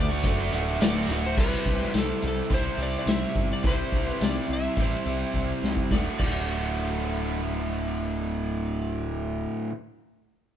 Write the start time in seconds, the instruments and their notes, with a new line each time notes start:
Already playing: picked electric bass D2, electric slide guitar D5
0.09 overdriven electric guitar A3 F#4
0.13 overdriven electric guitar D3
0.23 picked electric bass F#1, kick, closed hi-hat
0.38 overdriven electric guitar D3 A3 F#4
0.51 picked electric bass D1, overdriven electric guitar A2 D3 A3 F#4, closed hi-hat
0.79 picked electric bass D1, overdriven electric guitar D2 A2 D3 A3 F#4, electric slide guitar D5, snare, closed hi-hat, tambourine
0.95 overdriven electric guitar D3 A3 F#4
1.08 picked electric bass D1, overdriven electric guitar A2 D3 A3 F#4, closed hi-hat
1.23 overdriven electric guitar D3 A3 F#4, electric slide guitar C5
1.36 picked electric bass C2, overdriven electric guitar C3 G3 C4 E4 G4 C5, kick, crash
1.40 electric slide guitar B4
1.66 picked electric bass C2, kick, closed hi-hat
1.81 snare
1.94 picked electric bass C2, snare, closed hi-hat, tambourine
1.98 electric slide guitar A4
2.22 picked electric bass C2, closed hi-hat
2.28 electric slide guitar A4
2.49 picked electric bass C2, overdriven electric guitar C3 G3 C4 E4 G4 C5, kick, closed hi-hat
2.54 electric slide guitar C5
2.77 picked electric bass C2, closed hi-hat
2.83 electric slide guitar D5
2.99 electric slide guitar D5
3.06 picked electric bass C2, electric slide guitar E5, snare, closed hi-hat, tambourine
3.23 snare
3.36 picked electric bass G1, kick, closed hi-hat
3.53 electric slide guitar D5
3.63 picked electric bass C2, overdriven electric guitar C3 G3 C4 E4 G4 C5, kick, closed hi-hat
3.67 electric slide guitar C5
3.92 picked electric bass C2, kick, closed hi-hat
4.08 electric slide guitar B4
4.21 picked electric bass C2, electric slide guitar D5, snare, closed hi-hat, tambourine
4.49 picked electric bass C2, closed hi-hat
4.53 electric slide guitar E5
4.76 picked electric bass A1, overdriven electric guitar C3 G3 C4, kick, closed hi-hat
4.81 overdriven electric guitar E4 G4 C5
5.05 picked electric bass C2, closed hi-hat
5.34 picked electric bass C2, kick
5.63 picked electric bass C2, snare
5.77 kick
5.91 picked electric bass D1, overdriven electric guitar D2 A2 D3 A3, electric slide guitar D5, kick, snare
5.96 overdriven electric guitar F#4
6.19 picked electric bass D1, overdriven electric guitar D2 A2 D3 A3, electric slide guitar D5, kick, crash
6.23 overdriven electric guitar F#4